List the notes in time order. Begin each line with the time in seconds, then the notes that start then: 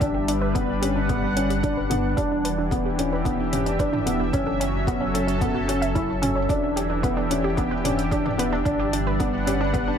Already playing: D4 G4 E5
0.01 G1 G3 D4, kick, closed hi-hat
0.14 G4 B4
0.28 D4, closed hi-hat
0.41 B4
0.55 B3 D4, kick, closed hi-hat
0.74 F#5
0.82 C#4 G4, closed hi-hat
0.96 D4
1.09 B3 B4, kick, closed hi-hat, mid tom
1.23 D4
1.36 C#4, closed hi-hat
1.50 G4, closed hi-hat
1.63 D4, kick, closed hi-hat
1.77 B4
1.90 B3 D4, closed hi-hat, mid tom
2.17 E1 E3 D4 G4, kick, closed hi-hat
2.31 D4
2.45 G4 B4, closed hi-hat
2.58 D4
2.71 B3, kick, closed hi-hat
2.85 G4
2.95 C#4 D4 E5, closed hi-hat
3.12 B4
3.25 B3 D4, kick, closed hi-hat
3.52 C#4 G4, closed hi-hat, mid tom
3.66 D4, closed hi-hat
3.79 D4 B4, kick, closed hi-hat
3.93 D4, mid tom
4.06 B3, closed hi-hat
4.20 G4
4.33 F#1 F#3 C#4, kick, closed hi-hat
4.40 C#4
4.47 A4
4.60 C#4, closed hi-hat
4.87 B3 F#4 A4, kick, closed hi-hat
5.01 C#4
5.14 C#4 A4, closed hi-hat
5.27 C#4, closed hi-hat
5.41 B3, kick, closed hi-hat, mid tom
5.54 F#4
5.68 C#4 F#4, closed hi-hat
5.82 E5, closed hi-hat
5.95 C#4 E4, kick, closed hi-hat
6.22 C#4, closed hi-hat, mid tom
6.36 C#4
6.49 E1 E3 D4, kick, closed hi-hat
6.63 D4
6.76 G4, closed hi-hat
6.81 G4
6.90 D4
7.03 B3 B4, kick, closed hi-hat
7.17 D4
7.30 C#4, closed hi-hat
7.44 G4
7.57 B3 D4, kick, closed hi-hat
7.71 B4
7.84 C#4 D4, closed hi-hat, mid tom
7.99 closed hi-hat
8.11 D4 G4, kick, closed hi-hat
8.25 D4, mid tom
8.38 B3 B4, closed hi-hat
8.52 D4
8.65 G1 G3 D4, kick, closed hi-hat
8.79 G4
8.93 D4, closed hi-hat
9.07 B4 F#5
9.19 B3 D4, kick, closed hi-hat
9.46 C#4 G4, closed hi-hat
9.61 D4
9.73 B3 B4, kick, closed hi-hat, mid tom
9.88 D4